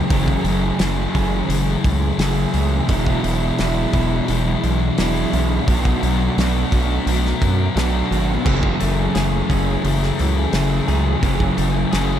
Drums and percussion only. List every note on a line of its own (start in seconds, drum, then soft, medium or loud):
0.10 kick loud
0.10 open hi-hat medium
0.28 kick medium
0.45 open hi-hat medium
0.79 snare loud
0.79 open hi-hat medium
1.15 kick medium
1.15 open hi-hat medium
1.50 open hi-hat medium
1.84 kick medium
1.84 open hi-hat medium
2.19 snare loud
2.19 open hi-hat medium
2.54 open hi-hat medium
2.89 kick loud
2.89 open hi-hat medium
3.06 kick medium
3.24 open hi-hat medium
3.59 snare loud
3.59 open hi-hat medium
3.93 kick medium
3.93 open hi-hat medium
4.28 open hi-hat medium
4.64 open hi-hat medium
4.98 snare loud
4.98 open hi-hat medium
5.33 open hi-hat medium
5.68 kick loud
5.68 open hi-hat medium
5.85 kick medium
6.03 open hi-hat medium
6.38 snare loud
6.38 open hi-hat medium
6.72 kick medium
6.72 open hi-hat medium
7.07 open hi-hat medium
7.25 snare soft
7.42 kick medium
7.42 open hi-hat medium
7.77 snare loud
7.77 open hi-hat medium
8.12 open hi-hat medium
8.46 kick loud
8.46 crash loud
8.63 kick medium
8.80 open hi-hat medium
9.15 snare loud
9.15 open hi-hat medium
9.50 kick medium
9.50 open hi-hat medium
9.85 open hi-hat medium
10.03 snare soft
10.19 open hi-hat medium
10.53 snare loud
10.53 open hi-hat medium
10.88 open hi-hat medium
11.23 kick loud
11.23 open hi-hat medium
11.40 kick medium
11.58 open hi-hat medium
11.93 snare loud
11.93 open hi-hat medium